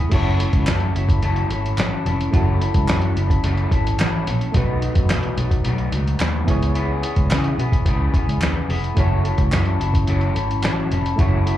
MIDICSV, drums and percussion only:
0, 0, Header, 1, 2, 480
1, 0, Start_track
1, 0, Tempo, 553506
1, 104, Time_signature, 4, 2, 24, 8
1, 10037, End_track
2, 0, Start_track
2, 0, Title_t, "Drums"
2, 99, Note_on_c, 9, 49, 75
2, 100, Note_on_c, 9, 42, 75
2, 103, Note_on_c, 9, 36, 90
2, 186, Note_off_c, 9, 49, 0
2, 187, Note_off_c, 9, 42, 0
2, 189, Note_off_c, 9, 36, 0
2, 347, Note_on_c, 9, 42, 82
2, 433, Note_off_c, 9, 42, 0
2, 460, Note_on_c, 9, 42, 59
2, 461, Note_on_c, 9, 36, 86
2, 547, Note_off_c, 9, 42, 0
2, 548, Note_off_c, 9, 36, 0
2, 579, Note_on_c, 9, 39, 87
2, 582, Note_on_c, 9, 42, 96
2, 589, Note_on_c, 9, 38, 107
2, 665, Note_off_c, 9, 39, 0
2, 669, Note_off_c, 9, 42, 0
2, 676, Note_off_c, 9, 38, 0
2, 695, Note_on_c, 9, 42, 36
2, 782, Note_off_c, 9, 42, 0
2, 831, Note_on_c, 9, 42, 75
2, 918, Note_off_c, 9, 42, 0
2, 942, Note_on_c, 9, 36, 80
2, 949, Note_on_c, 9, 42, 58
2, 1029, Note_off_c, 9, 36, 0
2, 1035, Note_off_c, 9, 42, 0
2, 1062, Note_on_c, 9, 42, 81
2, 1149, Note_off_c, 9, 42, 0
2, 1181, Note_on_c, 9, 42, 34
2, 1267, Note_off_c, 9, 42, 0
2, 1304, Note_on_c, 9, 42, 68
2, 1391, Note_off_c, 9, 42, 0
2, 1437, Note_on_c, 9, 42, 59
2, 1524, Note_off_c, 9, 42, 0
2, 1536, Note_on_c, 9, 42, 83
2, 1542, Note_on_c, 9, 39, 67
2, 1558, Note_on_c, 9, 38, 113
2, 1623, Note_off_c, 9, 42, 0
2, 1629, Note_off_c, 9, 39, 0
2, 1644, Note_off_c, 9, 38, 0
2, 1788, Note_on_c, 9, 42, 71
2, 1793, Note_on_c, 9, 38, 32
2, 1874, Note_off_c, 9, 42, 0
2, 1879, Note_off_c, 9, 38, 0
2, 1913, Note_on_c, 9, 42, 53
2, 2000, Note_off_c, 9, 42, 0
2, 2025, Note_on_c, 9, 36, 98
2, 2026, Note_on_c, 9, 42, 79
2, 2112, Note_off_c, 9, 36, 0
2, 2113, Note_off_c, 9, 42, 0
2, 2268, Note_on_c, 9, 42, 77
2, 2355, Note_off_c, 9, 42, 0
2, 2379, Note_on_c, 9, 42, 60
2, 2381, Note_on_c, 9, 36, 85
2, 2466, Note_off_c, 9, 42, 0
2, 2468, Note_off_c, 9, 36, 0
2, 2499, Note_on_c, 9, 39, 77
2, 2505, Note_on_c, 9, 42, 96
2, 2512, Note_on_c, 9, 38, 111
2, 2586, Note_off_c, 9, 39, 0
2, 2591, Note_off_c, 9, 42, 0
2, 2598, Note_off_c, 9, 38, 0
2, 2616, Note_on_c, 9, 42, 34
2, 2702, Note_off_c, 9, 42, 0
2, 2747, Note_on_c, 9, 42, 82
2, 2834, Note_off_c, 9, 42, 0
2, 2862, Note_on_c, 9, 36, 82
2, 2869, Note_on_c, 9, 42, 57
2, 2949, Note_off_c, 9, 36, 0
2, 2956, Note_off_c, 9, 42, 0
2, 2981, Note_on_c, 9, 42, 78
2, 3067, Note_off_c, 9, 42, 0
2, 3100, Note_on_c, 9, 42, 34
2, 3187, Note_off_c, 9, 42, 0
2, 3221, Note_on_c, 9, 36, 78
2, 3225, Note_on_c, 9, 42, 68
2, 3308, Note_off_c, 9, 36, 0
2, 3312, Note_off_c, 9, 42, 0
2, 3354, Note_on_c, 9, 42, 60
2, 3441, Note_off_c, 9, 42, 0
2, 3456, Note_on_c, 9, 42, 74
2, 3465, Note_on_c, 9, 39, 77
2, 3478, Note_on_c, 9, 38, 103
2, 3543, Note_off_c, 9, 42, 0
2, 3551, Note_off_c, 9, 39, 0
2, 3564, Note_off_c, 9, 38, 0
2, 3705, Note_on_c, 9, 42, 79
2, 3709, Note_on_c, 9, 38, 33
2, 3791, Note_off_c, 9, 42, 0
2, 3796, Note_off_c, 9, 38, 0
2, 3826, Note_on_c, 9, 42, 51
2, 3913, Note_off_c, 9, 42, 0
2, 3939, Note_on_c, 9, 42, 81
2, 3941, Note_on_c, 9, 36, 96
2, 4026, Note_off_c, 9, 42, 0
2, 4028, Note_off_c, 9, 36, 0
2, 4181, Note_on_c, 9, 42, 82
2, 4268, Note_off_c, 9, 42, 0
2, 4295, Note_on_c, 9, 42, 58
2, 4298, Note_on_c, 9, 36, 85
2, 4382, Note_off_c, 9, 42, 0
2, 4384, Note_off_c, 9, 36, 0
2, 4419, Note_on_c, 9, 42, 94
2, 4420, Note_on_c, 9, 39, 78
2, 4426, Note_on_c, 9, 38, 122
2, 4506, Note_off_c, 9, 42, 0
2, 4507, Note_off_c, 9, 39, 0
2, 4513, Note_off_c, 9, 38, 0
2, 4534, Note_on_c, 9, 42, 35
2, 4620, Note_off_c, 9, 42, 0
2, 4661, Note_on_c, 9, 42, 80
2, 4748, Note_off_c, 9, 42, 0
2, 4777, Note_on_c, 9, 36, 89
2, 4782, Note_on_c, 9, 42, 59
2, 4864, Note_off_c, 9, 36, 0
2, 4868, Note_off_c, 9, 42, 0
2, 4896, Note_on_c, 9, 42, 75
2, 4982, Note_off_c, 9, 42, 0
2, 5014, Note_on_c, 9, 42, 31
2, 5101, Note_off_c, 9, 42, 0
2, 5137, Note_on_c, 9, 42, 73
2, 5224, Note_off_c, 9, 42, 0
2, 5268, Note_on_c, 9, 42, 61
2, 5355, Note_off_c, 9, 42, 0
2, 5367, Note_on_c, 9, 42, 83
2, 5375, Note_on_c, 9, 39, 82
2, 5389, Note_on_c, 9, 38, 106
2, 5454, Note_off_c, 9, 42, 0
2, 5462, Note_off_c, 9, 39, 0
2, 5475, Note_off_c, 9, 38, 0
2, 5617, Note_on_c, 9, 36, 101
2, 5619, Note_on_c, 9, 42, 83
2, 5624, Note_on_c, 9, 38, 35
2, 5704, Note_off_c, 9, 36, 0
2, 5706, Note_off_c, 9, 42, 0
2, 5711, Note_off_c, 9, 38, 0
2, 5745, Note_on_c, 9, 42, 54
2, 5832, Note_off_c, 9, 42, 0
2, 5857, Note_on_c, 9, 42, 81
2, 5944, Note_off_c, 9, 42, 0
2, 6099, Note_on_c, 9, 42, 83
2, 6186, Note_off_c, 9, 42, 0
2, 6212, Note_on_c, 9, 42, 65
2, 6215, Note_on_c, 9, 36, 86
2, 6299, Note_off_c, 9, 42, 0
2, 6302, Note_off_c, 9, 36, 0
2, 6335, Note_on_c, 9, 39, 79
2, 6342, Note_on_c, 9, 42, 98
2, 6349, Note_on_c, 9, 38, 108
2, 6422, Note_off_c, 9, 39, 0
2, 6429, Note_off_c, 9, 42, 0
2, 6436, Note_off_c, 9, 38, 0
2, 6454, Note_on_c, 9, 42, 33
2, 6540, Note_off_c, 9, 42, 0
2, 6586, Note_on_c, 9, 42, 81
2, 6673, Note_off_c, 9, 42, 0
2, 6697, Note_on_c, 9, 36, 92
2, 6704, Note_on_c, 9, 42, 55
2, 6783, Note_off_c, 9, 36, 0
2, 6791, Note_off_c, 9, 42, 0
2, 6813, Note_on_c, 9, 36, 81
2, 6815, Note_on_c, 9, 42, 77
2, 6900, Note_off_c, 9, 36, 0
2, 6902, Note_off_c, 9, 42, 0
2, 7057, Note_on_c, 9, 36, 78
2, 7062, Note_on_c, 9, 42, 67
2, 7143, Note_off_c, 9, 36, 0
2, 7149, Note_off_c, 9, 42, 0
2, 7190, Note_on_c, 9, 42, 54
2, 7277, Note_off_c, 9, 42, 0
2, 7292, Note_on_c, 9, 42, 78
2, 7296, Note_on_c, 9, 39, 80
2, 7313, Note_on_c, 9, 38, 110
2, 7379, Note_off_c, 9, 42, 0
2, 7383, Note_off_c, 9, 39, 0
2, 7400, Note_off_c, 9, 38, 0
2, 7543, Note_on_c, 9, 46, 54
2, 7547, Note_on_c, 9, 38, 34
2, 7629, Note_off_c, 9, 46, 0
2, 7634, Note_off_c, 9, 38, 0
2, 7666, Note_on_c, 9, 42, 50
2, 7753, Note_off_c, 9, 42, 0
2, 7776, Note_on_c, 9, 42, 76
2, 7777, Note_on_c, 9, 36, 96
2, 7863, Note_off_c, 9, 42, 0
2, 7864, Note_off_c, 9, 36, 0
2, 8021, Note_on_c, 9, 42, 74
2, 8108, Note_off_c, 9, 42, 0
2, 8134, Note_on_c, 9, 42, 60
2, 8137, Note_on_c, 9, 36, 81
2, 8220, Note_off_c, 9, 42, 0
2, 8224, Note_off_c, 9, 36, 0
2, 8256, Note_on_c, 9, 39, 78
2, 8260, Note_on_c, 9, 42, 91
2, 8267, Note_on_c, 9, 38, 108
2, 8342, Note_off_c, 9, 39, 0
2, 8347, Note_off_c, 9, 42, 0
2, 8354, Note_off_c, 9, 38, 0
2, 8372, Note_on_c, 9, 42, 32
2, 8459, Note_off_c, 9, 42, 0
2, 8507, Note_on_c, 9, 42, 76
2, 8594, Note_off_c, 9, 42, 0
2, 8618, Note_on_c, 9, 36, 90
2, 8626, Note_on_c, 9, 42, 61
2, 8705, Note_off_c, 9, 36, 0
2, 8713, Note_off_c, 9, 42, 0
2, 8737, Note_on_c, 9, 42, 83
2, 8823, Note_off_c, 9, 42, 0
2, 8855, Note_on_c, 9, 42, 30
2, 8941, Note_off_c, 9, 42, 0
2, 8984, Note_on_c, 9, 42, 66
2, 9070, Note_off_c, 9, 42, 0
2, 9112, Note_on_c, 9, 42, 57
2, 9199, Note_off_c, 9, 42, 0
2, 9213, Note_on_c, 9, 42, 78
2, 9222, Note_on_c, 9, 39, 71
2, 9235, Note_on_c, 9, 38, 104
2, 9300, Note_off_c, 9, 42, 0
2, 9308, Note_off_c, 9, 39, 0
2, 9321, Note_off_c, 9, 38, 0
2, 9466, Note_on_c, 9, 42, 77
2, 9471, Note_on_c, 9, 38, 34
2, 9553, Note_off_c, 9, 42, 0
2, 9557, Note_off_c, 9, 38, 0
2, 9590, Note_on_c, 9, 42, 48
2, 9676, Note_off_c, 9, 42, 0
2, 9701, Note_on_c, 9, 36, 96
2, 9703, Note_on_c, 9, 42, 83
2, 9788, Note_off_c, 9, 36, 0
2, 9790, Note_off_c, 9, 42, 0
2, 9946, Note_on_c, 9, 42, 83
2, 10033, Note_off_c, 9, 42, 0
2, 10037, End_track
0, 0, End_of_file